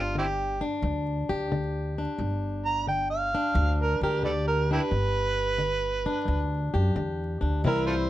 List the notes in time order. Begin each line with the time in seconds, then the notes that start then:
Already playing: G1 D4 F4 G4
0.15 D3 C4 E4 G4
0.61 D4
0.82 D2 G2
1.29 D2 G4
1.52 D3
1.98 D4
2.18 G1 G2
2.65 A#5
2.87 D3 G5
3.10 F5
3.35 D4
3.54 D2 G2
3.82 A#4
4.01 D2 G4 A#4
4.23 D3 A4 B4 D5
4.47 A#4
4.71 D4 E4 G4 B4
4.91 G1 G2
5.58 D3
6.06 D4
6.25 D2 G2
6.74 F#2 G4
6.96 E2 D3
7.41 D2 D4
7.64 C2 C3 E3 G3 C4 E4 A#4
7.86 F4 A4 C5